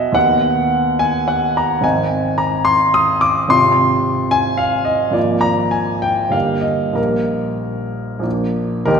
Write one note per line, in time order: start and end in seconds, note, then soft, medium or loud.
0.00 0.17 B1 soft
0.00 0.18 F#3 soft
0.00 0.11 B3 soft
0.00 0.11 D#4 soft
0.00 0.17 B4 medium
0.00 0.14 D#5 medium
0.00 0.18 E5 medium
0.00 0.15 F#5 medium
0.00 0.18 G#5 medium
0.12 1.78 D#2 medium
0.12 1.79 D#3 soft
0.12 1.79 B3 soft
0.12 1.80 D#4 soft
0.12 1.00 F#5 medium
0.99 1.27 G#5 medium
1.28 1.55 F#5 medium
1.57 1.84 A#5 medium
1.81 3.46 G#1 medium
1.81 3.46 D#3 soft
1.81 3.47 C4 medium
1.81 3.47 D#4 soft
1.81 2.39 G#5 medium
2.38 2.66 A#5 medium
2.65 2.93 C6 loud
2.94 3.22 D#6 medium
3.21 3.50 D6 medium
3.48 5.09 G#1 medium
3.48 5.11 C3 soft
3.48 5.11 C4 soft
3.48 5.12 F4 medium
3.48 4.32 C6 loud
4.31 4.59 G#5 loud
4.57 4.86 F5 medium
4.85 5.15 D#5 medium
5.11 6.28 G#1 medium
5.11 6.29 F3 soft
5.11 6.29 A#3 soft
5.11 6.30 F4 soft
5.11 5.44 D5 medium
5.41 5.72 A#5 medium
5.71 6.02 G#5 medium
6.02 6.33 G5 medium
6.29 6.93 G1 soft
6.29 6.93 G3 soft
6.29 6.94 A#3 soft
6.29 6.94 D#4 soft
6.29 6.64 F5 medium
6.61 6.95 D#5 medium
6.93 8.18 A#1 soft
6.93 8.19 G3 soft
6.93 8.20 A#3 soft
6.93 8.20 D#4 soft
6.93 8.24 A#4 medium
8.19 8.84 A#1 soft
8.19 8.86 F3 soft
8.19 8.86 A#3 soft
8.19 8.86 D4 soft
8.86 9.00 D#1 medium
8.86 9.00 D#2 medium
8.86 9.00 D#4 medium
8.86 9.00 G4 medium
8.86 9.00 A#4 medium